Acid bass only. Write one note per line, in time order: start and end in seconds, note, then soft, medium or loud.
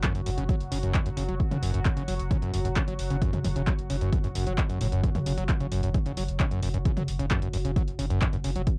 0.03 0.13 F#2 loud
0.15 0.21 F#2 medium
0.26 0.30 F#2 loud
0.38 0.44 C#3 medium
0.49 0.55 F#3 medium
0.72 0.78 C#3 loud
0.83 0.92 F#2 loud
0.94 1.01 F#2 medium
1.06 1.10 F#2 loud
1.17 1.23 C#3 medium
1.29 1.35 F#3 medium
1.51 1.57 C#3 loud
1.62 1.72 F#2 loud
1.74 1.80 F#2 medium
1.85 1.89 F#2 loud
1.97 2.03 C#3 medium
2.08 2.14 F#3 medium
2.31 2.37 C#3 loud
2.42 2.51 F#2 loud
2.53 2.60 F#2 medium
2.65 2.69 F#2 loud
2.76 2.82 C#3 medium
2.88 2.94 F#3 medium
3.10 3.17 C#3 loud
3.22 3.31 F#2 loud
3.33 3.39 F#2 medium
3.44 3.48 F#2 loud
3.56 3.62 C#3 medium
3.67 3.73 F#3 medium
3.90 3.96 C#3 loud
4.01 4.11 F#2 loud
4.13 4.19 F#2 medium
4.24 4.28 F#2 loud
4.35 4.45 F#2 medium
4.47 4.53 F#3 medium
4.70 4.79 F#2 medium
4.81 4.87 A2 loud
4.92 5.02 F#2 loud
5.04 5.10 F#2 medium
5.15 5.19 F#2 loud
5.26 5.33 C#3 medium
5.38 5.44 F#3 medium
5.60 5.67 C#3 loud
5.72 5.81 F#2 loud
5.83 5.89 F#2 medium
5.94 5.98 F#2 loud
6.06 6.12 C#3 medium
6.17 6.23 F#3 medium
6.40 6.46 C#3 loud
6.51 6.61 F#2 loud
6.63 6.69 F#2 medium
6.74 6.78 F#2 loud
6.85 6.92 C#3 medium
6.97 7.03 F#3 medium
7.19 7.26 C#3 loud
7.31 7.40 F#2 loud
7.42 7.48 F#2 medium
7.53 7.57 F#2 loud
7.65 7.71 C#3 medium
7.76 7.83 F#3 medium
7.99 8.05 C#3 loud
8.10 8.20 F#2 loud
8.22 8.28 F#2 medium
8.33 8.37 F#2 loud
8.44 8.51 C#3 medium
8.56 8.62 F#3 medium